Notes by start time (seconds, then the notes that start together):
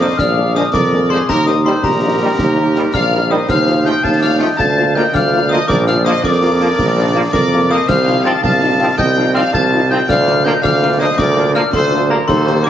0.00 F3 A#3 D4 C5 D#5 D#6
0.17 A#1 D5 F5 F6, concert bass drum, snare
0.37 G#3 A#3 D4
0.54 D3 G#3 A#3 D4 C5 D#5 D#6, snare
0.72 F2 A#4 D5 D6, concert bass drum, snare
0.92 G#3 A#3 D4
1.10 D3 G#3 A#3 D4 G#4 C5 C6
1.28 D#2 G4 A#4 A#5, concert bass drum, snare, crash
1.46 G3 A#3 D#4 C5 D#5 D#6, snare
1.64 D#3 G3 A#3 D#4 A4 C5 C6, snare
1.83 A#1 G4 A#4 A#5, concert bass drum, snare
2.02 G3 A#3 D#4
2.20 D#3 G3 A#3 D#4
2.39 D#2, concert bass drum, snare
2.57 G3 A#3 D#4
2.75 D#3 G3 A#3 D#4, snare
2.93 A#1 D5 F5 F6, concert bass drum, snare
3.12 G3 A#3 D#4
3.30 D#3 G3 A#3 D#4 C5 D#5 D#6
3.49 D#2 C5 F5 F6, concert bass drum, snare, crash
3.67 F3 A3 F4, snare
3.84 F3 A3 F4 D#5 G5 G6, snare
4.03 D#2 F5 A5 A6, concert bass drum, snare
4.20 F3 A3 F4 D5 F5 F6
4.40 F3 A3 F4 D#5 G5 G6
4.58 D2 F5 A5 A6, concert bass drum, snare
4.76 F3 A#3 F4
4.95 F3 A#3 F4 D#5 G5 G6, snare
5.13 D2 D5 F5 F6, concert bass drum, snare
5.33 F3 A#3 F4
5.49 F3 A#3 F4 C5 D#5 D#6
5.67 A#1 A#4 D5 D6, concert bass drum, snare, crash
5.86 F3 A#3 F4 D5 F5 F6, snare
6.04 F3 A#3 F4 C5 D#5 D#6, snare
6.23 F2 A#4 D5 D6, concert bass drum, snare
6.42 F3 A#3 F4
6.60 F3 A#3 F4
6.79 A#1, concert bass drum, snare
6.97 F3 A#3 F4
7.15 F3 A#3 F4
7.32 F2 A#4 D5 D6, concert bass drum, snare
7.53 F3 A#3 F4
7.70 F3 A#3 F4 C5 D#5 D#6
7.87 C2 C5 F5 F6, concert bass drum, snare, crash
8.07 F3 D#4 F4, snare
8.24 F3 C4 D#4 F4 F5 A5 A6, snare
8.43 C2 F5 A5 A6, concert bass drum, snare
8.62 F3 D#4 F4
8.79 F3 C4 D#4 F4
8.97 C2 D#5 G5 G6, concert bass drum, snare
9.17 F3 D#4 F4
9.33 F3 C4 D#4 F4 D5 F5 F6, snare
9.53 C2 F5 A5 A6, concert bass drum, snare
9.72 F3 D#4 F4
9.90 F3 C4 D#4 F4 D#5 G5 G6
10.08 D2 D5 F5 F6, concert bass drum, snare, crash
10.27 A#3 D4 F4, snare
10.44 F3 A#3 D4 F4 D#5 G5 G6, snare
10.62 D2 D5 F5 F6, concert bass drum, snare
10.82 A#3 D4 F4
10.99 F3 A#3 D4 F4 C5 D#5 D#6
11.18 D2 A#4 D5 D6, concert bass drum, snare
11.36 A#3 D4 F4
11.54 F3 A#3 D4 F4 D5 F5 F6, snare
11.73 D2 A4 C5 C6, concert bass drum, snare
11.91 A#3 D4 F4
12.08 F3 A#3 D4 F4 G4 A#4 A#5
12.27 D#2 A4 C5 C6, concert bass drum, snare, crash
12.47 G3 A#3 G4, snare
12.63 G3 A#3 G4 A#4 D5 D6, snare